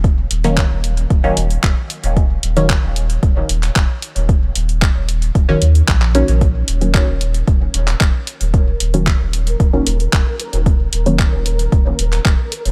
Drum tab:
HH |x-oxx-oxx-oxx-ox|x-oxx-oxx-oxx-ox|x-oxx-oxx-oxx-ox|x-oxx-oxx-oxx-ox|
CP |----x-------x---|----x------xx---|----x-------xx--|----x------xx---|
BD |o---o---o---o---|o---o---o---o---|o---o---o---o---|o---o---o---o---|

HH |x-oxx-oxx-oxx-ox|x-oxx-oxx-oxx-ox|
CP |----x-------x---|----x------xx---|
BD |o---o---o---o---|o---o---o---o---|